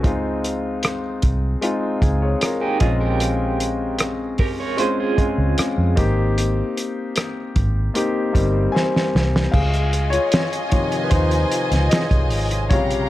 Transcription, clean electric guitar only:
0, 0, Header, 1, 2, 480
1, 0, Start_track
1, 0, Tempo, 791557
1, 25, Time_signature, 4, 2, 24, 8
1, 7938, End_track
2, 0, Start_track
2, 0, Title_t, "Clean electric guitar"
2, 0, Program_c, 0, 27
2, 1585, Note_on_c, 0, 67, 61
2, 1590, Note_on_c, 0, 63, 53
2, 1697, Note_off_c, 0, 67, 0
2, 1700, Note_on_c, 0, 68, 61
2, 1701, Note_off_c, 0, 63, 0
2, 1707, Note_on_c, 0, 65, 50
2, 1816, Note_off_c, 0, 68, 0
2, 1819, Note_off_c, 0, 65, 0
2, 1822, Note_on_c, 0, 70, 59
2, 1826, Note_on_c, 0, 67, 51
2, 2518, Note_off_c, 0, 70, 0
2, 2520, Note_off_c, 0, 67, 0
2, 2666, Note_on_c, 0, 70, 59
2, 2670, Note_on_c, 0, 67, 47
2, 2779, Note_off_c, 0, 70, 0
2, 2781, Note_off_c, 0, 67, 0
2, 2788, Note_on_c, 0, 73, 65
2, 2792, Note_on_c, 0, 70, 55
2, 2900, Note_off_c, 0, 73, 0
2, 2902, Note_off_c, 0, 70, 0
2, 2907, Note_on_c, 0, 72, 67
2, 2911, Note_on_c, 0, 68, 57
2, 3019, Note_off_c, 0, 72, 0
2, 3021, Note_off_c, 0, 68, 0
2, 3030, Note_on_c, 0, 65, 45
2, 3033, Note_on_c, 0, 68, 50
2, 3603, Note_off_c, 0, 65, 0
2, 3603, Note_off_c, 0, 68, 0
2, 7938, End_track
0, 0, End_of_file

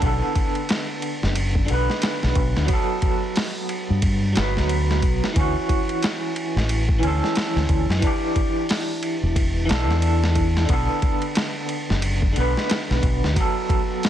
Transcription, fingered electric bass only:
0, 0, Header, 1, 2, 480
1, 0, Start_track
1, 0, Key_signature, 2, "minor"
1, 0, Tempo, 666667
1, 18, Time_signature, 4, 2, 24, 8
1, 10148, End_track
2, 0, Start_track
2, 0, Title_t, "Fingered electric bass"
2, 0, Program_c, 0, 33
2, 21, Note_on_c, 0, 35, 97
2, 144, Note_off_c, 0, 35, 0
2, 887, Note_on_c, 0, 30, 79
2, 1203, Note_off_c, 0, 30, 0
2, 1225, Note_on_c, 0, 35, 81
2, 1346, Note_off_c, 0, 35, 0
2, 1610, Note_on_c, 0, 35, 77
2, 1691, Note_off_c, 0, 35, 0
2, 1699, Note_on_c, 0, 35, 90
2, 1824, Note_off_c, 0, 35, 0
2, 1847, Note_on_c, 0, 38, 88
2, 1930, Note_off_c, 0, 38, 0
2, 2808, Note_on_c, 0, 43, 75
2, 3123, Note_off_c, 0, 43, 0
2, 3149, Note_on_c, 0, 31, 90
2, 3290, Note_on_c, 0, 38, 76
2, 3300, Note_off_c, 0, 31, 0
2, 3622, Note_off_c, 0, 38, 0
2, 3622, Note_on_c, 0, 35, 91
2, 3745, Note_off_c, 0, 35, 0
2, 3863, Note_on_c, 0, 38, 97
2, 3985, Note_off_c, 0, 38, 0
2, 4723, Note_on_c, 0, 33, 78
2, 5041, Note_off_c, 0, 33, 0
2, 5061, Note_on_c, 0, 38, 87
2, 5184, Note_off_c, 0, 38, 0
2, 5442, Note_on_c, 0, 38, 72
2, 5527, Note_off_c, 0, 38, 0
2, 5540, Note_on_c, 0, 38, 89
2, 5664, Note_off_c, 0, 38, 0
2, 5683, Note_on_c, 0, 42, 91
2, 5768, Note_off_c, 0, 42, 0
2, 6644, Note_on_c, 0, 28, 76
2, 6961, Note_off_c, 0, 28, 0
2, 6982, Note_on_c, 0, 35, 87
2, 7123, Note_off_c, 0, 35, 0
2, 7123, Note_on_c, 0, 40, 89
2, 7681, Note_off_c, 0, 40, 0
2, 7700, Note_on_c, 0, 35, 92
2, 7824, Note_off_c, 0, 35, 0
2, 8568, Note_on_c, 0, 30, 75
2, 8883, Note_off_c, 0, 30, 0
2, 8906, Note_on_c, 0, 35, 84
2, 9027, Note_off_c, 0, 35, 0
2, 9290, Note_on_c, 0, 35, 78
2, 9371, Note_off_c, 0, 35, 0
2, 9383, Note_on_c, 0, 35, 84
2, 9505, Note_off_c, 0, 35, 0
2, 9530, Note_on_c, 0, 38, 86
2, 9611, Note_off_c, 0, 38, 0
2, 10148, End_track
0, 0, End_of_file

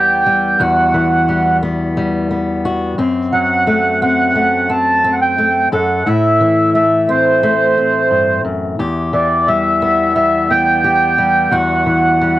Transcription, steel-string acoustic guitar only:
0, 0, Header, 1, 2, 480
1, 0, Start_track
1, 0, Key_signature, 1, "minor"
1, 0, Tempo, 682594
1, 420, Time_signature, 4, 2, 24, 8
1, 8715, End_track
2, 0, Start_track
2, 0, Title_t, "Steel-string acoustic guitar"
2, 0, Program_c, 0, 25
2, 0, Note_on_c, 0, 40, 60
2, 0, Note_on_c, 0, 52, 46
2, 0, Note_on_c, 0, 55, 52
2, 0, Note_on_c, 0, 59, 47
2, 0, Note_on_c, 0, 67, 54
2, 175, Note_off_c, 0, 55, 0
2, 184, Note_on_c, 0, 55, 42
2, 391, Note_off_c, 0, 52, 0
2, 393, Note_off_c, 0, 67, 0
2, 410, Note_off_c, 0, 40, 0
2, 419, Note_on_c, 0, 40, 61
2, 424, Note_on_c, 0, 66, 62
2, 659, Note_on_c, 0, 52, 49
2, 895, Note_off_c, 0, 55, 0
2, 904, Note_on_c, 0, 55, 43
2, 1135, Note_off_c, 0, 59, 0
2, 1144, Note_on_c, 0, 59, 49
2, 1378, Note_off_c, 0, 55, 0
2, 1386, Note_on_c, 0, 55, 49
2, 1614, Note_off_c, 0, 59, 0
2, 1622, Note_on_c, 0, 59, 45
2, 1856, Note_off_c, 0, 66, 0
2, 1864, Note_on_c, 0, 66, 53
2, 2069, Note_off_c, 0, 52, 0
2, 2073, Note_off_c, 0, 66, 0
2, 2093, Note_off_c, 0, 40, 0
2, 2096, Note_on_c, 0, 42, 59
2, 2097, Note_off_c, 0, 59, 0
2, 2100, Note_on_c, 0, 60, 49
2, 2102, Note_off_c, 0, 55, 0
2, 2339, Note_on_c, 0, 54, 51
2, 2582, Note_on_c, 0, 57, 50
2, 2824, Note_off_c, 0, 60, 0
2, 2827, Note_on_c, 0, 60, 58
2, 3058, Note_off_c, 0, 57, 0
2, 3061, Note_on_c, 0, 57, 48
2, 3299, Note_off_c, 0, 60, 0
2, 3302, Note_on_c, 0, 60, 55
2, 3539, Note_off_c, 0, 60, 0
2, 3547, Note_on_c, 0, 60, 53
2, 3778, Note_off_c, 0, 57, 0
2, 3787, Note_on_c, 0, 57, 44
2, 3989, Note_off_c, 0, 42, 0
2, 3991, Note_off_c, 0, 54, 0
2, 3994, Note_off_c, 0, 57, 0
2, 3995, Note_off_c, 0, 60, 0
2, 4023, Note_on_c, 0, 42, 55
2, 4028, Note_on_c, 0, 69, 56
2, 4233, Note_off_c, 0, 42, 0
2, 4235, Note_off_c, 0, 69, 0
2, 4264, Note_on_c, 0, 45, 62
2, 4268, Note_on_c, 0, 64, 60
2, 4504, Note_on_c, 0, 52, 49
2, 4746, Note_on_c, 0, 57, 48
2, 4984, Note_on_c, 0, 60, 48
2, 5217, Note_off_c, 0, 57, 0
2, 5226, Note_on_c, 0, 57, 55
2, 5459, Note_off_c, 0, 60, 0
2, 5468, Note_on_c, 0, 60, 45
2, 5700, Note_on_c, 0, 43, 47
2, 5936, Note_off_c, 0, 43, 0
2, 5939, Note_on_c, 0, 42, 43
2, 6155, Note_off_c, 0, 57, 0
2, 6156, Note_off_c, 0, 60, 0
2, 6178, Note_off_c, 0, 42, 0
2, 6181, Note_on_c, 0, 40, 58
2, 6182, Note_off_c, 0, 64, 0
2, 6183, Note_off_c, 0, 45, 0
2, 6185, Note_on_c, 0, 67, 62
2, 6417, Note_off_c, 0, 52, 0
2, 6420, Note_on_c, 0, 52, 50
2, 6668, Note_on_c, 0, 55, 46
2, 6905, Note_on_c, 0, 59, 45
2, 7134, Note_off_c, 0, 55, 0
2, 7142, Note_on_c, 0, 55, 49
2, 7378, Note_off_c, 0, 59, 0
2, 7387, Note_on_c, 0, 59, 48
2, 7616, Note_off_c, 0, 67, 0
2, 7624, Note_on_c, 0, 67, 53
2, 7854, Note_off_c, 0, 55, 0
2, 7863, Note_on_c, 0, 55, 43
2, 8073, Note_off_c, 0, 52, 0
2, 8075, Note_off_c, 0, 67, 0
2, 8089, Note_off_c, 0, 40, 0
2, 8097, Note_on_c, 0, 40, 61
2, 8103, Note_on_c, 0, 66, 60
2, 8341, Note_on_c, 0, 52, 50
2, 8580, Note_off_c, 0, 55, 0
2, 8589, Note_on_c, 0, 55, 52
2, 8715, Note_off_c, 0, 40, 0
2, 8715, Note_off_c, 0, 52, 0
2, 8715, Note_off_c, 0, 55, 0
2, 8715, Note_off_c, 0, 59, 0
2, 8715, Note_off_c, 0, 66, 0
2, 8715, End_track
0, 0, End_of_file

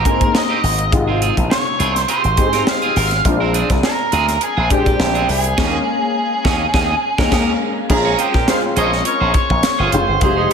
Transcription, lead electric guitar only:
0, 0, Header, 1, 2, 480
1, 0, Start_track
1, 0, Tempo, 580833
1, 764, Time_signature, 4, 2, 24, 8
1, 8703, End_track
2, 0, Start_track
2, 0, Title_t, "Lead electric guitar"
2, 0, Program_c, 0, 29
2, 0, Note_on_c, 0, 70, 84
2, 258, Note_off_c, 0, 70, 0
2, 297, Note_on_c, 0, 75, 87
2, 738, Note_off_c, 0, 75, 0
2, 1249, Note_on_c, 0, 73, 78
2, 1605, Note_off_c, 0, 73, 0
2, 1605, Note_on_c, 0, 72, 78
2, 1729, Note_off_c, 0, 72, 0
2, 1732, Note_on_c, 0, 72, 86
2, 2220, Note_on_c, 0, 77, 92
2, 2224, Note_off_c, 0, 72, 0
2, 2661, Note_off_c, 0, 77, 0
2, 3180, Note_on_c, 0, 70, 105
2, 3660, Note_off_c, 0, 70, 0
2, 3664, Note_on_c, 0, 68, 101
2, 3899, Note_off_c, 0, 68, 0
2, 3902, Note_on_c, 0, 67, 89
2, 4385, Note_off_c, 0, 67, 0
2, 4389, Note_on_c, 0, 68, 83
2, 6026, Note_off_c, 0, 68, 0
2, 6534, Note_on_c, 0, 70, 92
2, 6770, Note_off_c, 0, 70, 0
2, 6774, Note_on_c, 0, 67, 84
2, 7009, Note_on_c, 0, 77, 92
2, 7018, Note_off_c, 0, 67, 0
2, 7074, Note_off_c, 0, 77, 0
2, 7245, Note_on_c, 0, 75, 90
2, 7469, Note_off_c, 0, 75, 0
2, 7481, Note_on_c, 0, 73, 93
2, 7710, Note_off_c, 0, 73, 0
2, 7720, Note_on_c, 0, 73, 93
2, 8170, Note_off_c, 0, 73, 0
2, 8197, Note_on_c, 0, 72, 84
2, 8433, Note_off_c, 0, 72, 0
2, 8443, Note_on_c, 0, 72, 90
2, 8691, Note_off_c, 0, 72, 0
2, 8703, End_track
0, 0, End_of_file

